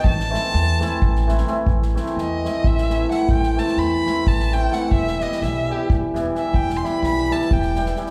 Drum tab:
SD |-oo-o-o--oooo-|-oooo-o--oo-o-|-oooo-o--oo-o-|-oooo-----o-o-|
BD |o-------o-----|o-------o-----|o-------o-----|o-------o-----|

SD |-oo-oooo-ooooo|
BD |o-------o-----|